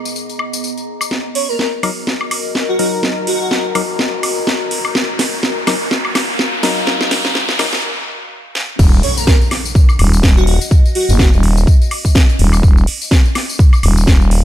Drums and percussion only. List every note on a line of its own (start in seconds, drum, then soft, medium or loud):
0.05 tambourine medium
0.16 tambourine medium
0.29 tambourine soft
0.39 high woodblock medium
0.53 tambourine medium
0.64 tambourine medium
0.77 tambourine soft
1.01 tambourine medium
1.01 high woodblock medium
1.11 snare soft
1.35 open hi-hat loud
1.59 snare soft
1.83 open hi-hat medium
1.83 high woodblock medium
2.07 snare soft
2.21 high woodblock medium
2.31 open hi-hat loud
2.31 high woodblock medium
2.55 snare medium
2.79 open hi-hat loud
3.03 snare medium
3.27 open hi-hat loud
3.51 snare medium
3.75 open hi-hat loud
3.75 high woodblock medium
3.99 snare medium
4.23 open hi-hat loud
4.23 high woodblock medium
4.47 snare medium
4.71 open hi-hat loud
4.85 high woodblock medium
4.95 snare medium
5.19 snare medium
5.19 open hi-hat loud
5.43 snare medium
5.67 snare medium
5.67 open hi-hat loud
5.67 high woodblock medium
5.91 snare medium
6.05 high woodblock medium
6.15 snare medium
6.15 open hi-hat loud
6.15 high woodblock medium
6.39 snare medium
6.63 snare medium
6.63 open hi-hat loud
6.87 snare medium
7.01 snare medium
7.11 snare medium
7.11 open hi-hat loud
7.25 snare medium
7.35 snare medium
7.49 snare medium
7.59 snare loud
7.59 open hi-hat loud
7.59 high woodblock medium
7.73 snare medium
8.55 snare medium
8.79 kick loud
8.79 crash loud
8.79 tambourine medium
8.93 tambourine soft
9.03 open hi-hat loud
9.17 tambourine medium
9.27 kick loud
9.27 snare loud
9.27 tambourine medium
9.41 tambourine soft
9.51 snare soft
9.51 open hi-hat loud
9.51 high woodblock medium
9.65 tambourine medium
9.75 kick loud
9.75 tambourine medium
9.89 tambourine soft
9.89 high woodblock medium
9.99 open hi-hat loud
9.99 high woodblock medium
10.13 tambourine medium
10.23 kick loud
10.23 snare loud
10.23 tambourine medium
10.37 tambourine soft
10.47 open hi-hat loud
10.61 tambourine medium
10.71 kick loud
10.71 tambourine medium
10.85 tambourine soft
10.95 open hi-hat loud
11.09 tambourine medium
11.19 kick loud
11.19 snare loud
11.19 tambourine medium
11.33 tambourine soft
11.43 open hi-hat loud
11.57 tambourine medium
11.67 kick loud
11.67 tambourine medium
11.81 tambourine soft
11.91 open hi-hat loud
11.91 high woodblock medium
12.05 kick medium
12.05 tambourine medium
12.15 kick loud
12.15 snare loud
12.15 tambourine medium
12.29 tambourine soft
12.39 open hi-hat loud
12.53 tambourine medium
12.53 high woodblock medium
12.63 kick loud
12.63 tambourine medium
12.78 tambourine soft
12.87 open hi-hat loud
13.01 tambourine medium
13.11 kick loud
13.11 snare loud
13.26 tambourine soft
13.35 snare soft
13.35 open hi-hat loud
13.35 high woodblock medium
13.49 tambourine medium
13.59 kick loud
13.59 tambourine medium
13.73 tambourine soft
13.73 high woodblock medium
13.83 open hi-hat loud
13.83 high woodblock medium
13.97 tambourine medium
14.07 kick loud
14.07 snare loud
14.07 tambourine medium
14.21 tambourine soft
14.31 open hi-hat loud